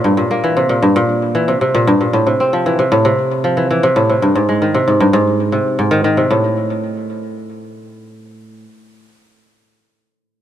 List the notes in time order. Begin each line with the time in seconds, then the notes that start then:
0.04 G2
0.17 A#2
0.31 A#3
0.44 E3
0.57 C3
0.69 A#2
0.82 G2
0.96 A#2
1.35 E3
1.48 C3
1.61 C3
1.75 A#2
1.87 G2
2.01 A#2
2.13 A2
2.27 C3
2.40 C4
2.53 F3
2.66 E3
2.79 C3
2.92 A2
3.05 C3
3.44 F3
3.57 E3
3.71 E3
3.83 C3
3.96 A2
4.09 C3
4.22 G2
4.35 G#2
4.49 G#3
4.62 D#3
4.74 C3
4.88 G#2
5.00 G2
5.13 G#2
5.52 C3
5.79 G#2
5.91 D#3
6.04 D#3
6.17 C3
6.31 A2